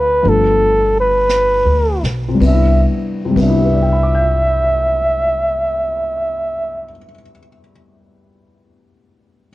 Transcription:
0.00 0.20 D2 medium
0.00 0.21 F3 soft
0.00 0.22 A3 soft
0.00 0.24 C4 soft
0.00 0.30 B4 medium
0.00 0.25 E5 soft
0.22 1.62 G1 medium
0.22 2.40 F3 soft
0.22 2.41 A3 soft
0.22 2.40 B3 soft
0.22 2.41 D4 soft
0.22 brush sweep soft
0.29 0.96 A4 medium
1.00 2.02 B4 medium
1.29 snare soft
1.29 hi-hat pedal soft
1.66 2.00 D2 soft
2.03 2.38 B1 soft
2.03 snare soft
2.28 2.81 C3 soft
2.34 2.84 G3 soft
2.40 2.84 C2 medium
2.40 2.87 B3 soft
2.40 kick soft
2.40 ride soft
2.46 2.90 D4 soft
2.46 2.86 E5 medium
2.53 2.93 E4 soft
3.25 6.85 C3 soft
3.31 6.91 G3 soft
3.36 6.93 C2 medium
3.36 6.97 B3 soft
3.36 kick soft
3.36 ride soft
3.43 7.03 D4 soft
3.43 6.99 E5 medium
3.49 7.10 E4 soft
3.58 7.14 G4 soft
3.64 7.21 B4 soft
3.73 7.29 D5 soft
3.82 7.38 G5 soft
3.92 7.49 B5 soft
4.03 7.59 D6 soft
4.15 7.71 G6 soft

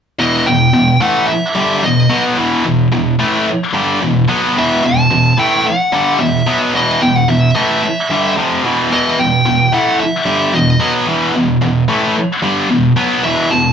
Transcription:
0.19 0.46 E2 medium
0.19 0.46 B2 medium
0.19 0.46 E3 loud
0.19 0.48 D#5 loud
0.46 0.69 E2 medium
0.46 0.69 B2 medium
0.46 1.01 G5 loud
0.73 0.96 E2 medium
0.73 0.96 B2 medium
1.00 1.27 A2 medium
1.00 1.28 E3 loud
1.00 1.28 A3 medium
1.00 1.27 F#5 loud
1.27 1.84 E5 medium
1.27 muted distorted electric guitar stroke medium
1.55 1.82 G2 loud
1.55 1.82 D3 medium
1.55 1.83 G3 loud
1.83 2.05 E2 medium
1.83 2.05 B2 medium
1.83 2.22 D#5 medium
2.10 2.36 B2 medium
2.10 2.37 F#3 medium
2.10 2.37 B3 loud
2.37 2.63 E2 medium
2.37 2.64 B2 loud
2.37 2.64 E3 loud
2.65 2.87 E2 medium
2.65 2.87 B2 medium
2.92 3.14 E2 medium
2.92 3.14 B2 medium
3.19 3.46 A2 medium
3.19 3.46 E3 loud
3.19 3.46 A3 loud
3.47 muted distorted electric guitar stroke medium
3.73 4.00 G2 medium
3.73 4.00 D3 medium
3.73 4.01 G3 loud
4.01 4.23 E2 medium
4.01 4.24 B2 medium
4.28 4.55 B2 medium
4.28 4.55 F#3 medium
4.28 4.55 B3 loud
4.55 4.82 E2 loud
4.55 4.83 B2 loud
4.55 4.83 E3 loud
4.55 4.86 E5 loud
4.84 5.05 E2 medium
4.84 5.05 B2 medium
4.84 5.35 A5 loud
5.11 5.33 E2 medium
5.11 5.33 B2 medium
5.38 5.64 A2 medium
5.38 5.65 E3 medium
5.38 5.65 A3 loud
5.38 5.67 G5 loud
5.66 6.20 F#5 medium
5.66 muted distorted electric guitar stroke medium
5.93 6.19 G2 medium
5.93 6.19 D3 loud
5.93 6.20 G3 loud
6.20 6.41 E2 medium
6.20 6.42 B2 medium
6.20 6.58 E5 medium
6.47 6.73 B2 medium
6.47 6.73 F#3 medium
6.47 6.74 B3 loud
6.74 7.00 E2 medium
6.74 7.01 B2 loud
6.74 7.01 E3 medium
6.74 7.03 D#5 loud
7.01 7.23 E2 medium
7.01 7.23 B2 medium
7.01 7.16 G5 medium
7.16 7.29 F#5 medium
7.28 7.50 E2 medium
7.28 7.50 B2 medium
7.28 7.55 E5 medium
7.56 7.82 A2 loud
7.56 7.82 E3 medium
7.56 7.82 A3 loud
7.56 8.33 E5 medium
7.84 muted distorted electric guitar stroke medium
8.11 8.36 G2 medium
8.11 8.37 D3 medium
8.11 8.37 G3 medium
8.37 8.63 F2 loud
8.37 8.63 C3 loud
8.37 8.64 F3 loud
8.64 8.89 E2 medium
8.64 8.90 B2 medium
8.64 8.90 E3 loud
8.90 9.17 E2 medium
8.90 9.17 B2 medium
8.90 9.17 E3 loud
8.90 9.20 D#5 loud
9.18 9.40 E2 medium
9.18 9.40 B2 medium
9.18 9.74 G5 loud
9.46 9.67 E2 medium
9.46 9.67 B2 medium
9.73 9.99 A2 medium
9.73 9.99 E3 loud
9.73 9.99 A3 loud
9.73 10.00 F#5 medium
10.00 10.56 E5 medium
10.00 muted distorted electric guitar stroke medium
10.26 10.52 G2 medium
10.26 10.53 D3 loud
10.26 10.53 G3 loud
10.54 10.75 E2 medium
10.54 10.75 B2 medium
10.54 10.91 D#5 medium
10.80 11.06 B2 medium
10.80 11.06 F#3 loud
10.80 11.07 B3 medium
11.07 11.33 E2 loud
11.07 11.34 B2 loud
11.07 11.34 E3 loud
11.34 11.56 E2 medium
11.34 11.56 B2 medium
11.61 11.83 E2 medium
11.61 11.83 B2 medium
11.88 12.15 A2 loud
11.88 12.15 E3 loud
11.88 12.15 A3 loud
12.16 muted distorted electric guitar stroke medium
12.42 12.69 G2 medium
12.42 12.69 D3 medium
12.42 12.69 G3 loud
12.70 12.91 E2 medium
12.70 12.91 B2 medium
12.96 13.23 B2 medium
12.96 13.23 F#3 medium
12.96 13.23 B3 loud
13.23 13.50 E2 medium
13.23 13.50 B2 loud
13.23 13.50 E3 loud
13.23 13.52 E5 medium
13.51 13.73 E2 medium
13.51 13.73 B2 medium
13.51 13.73 A5 medium

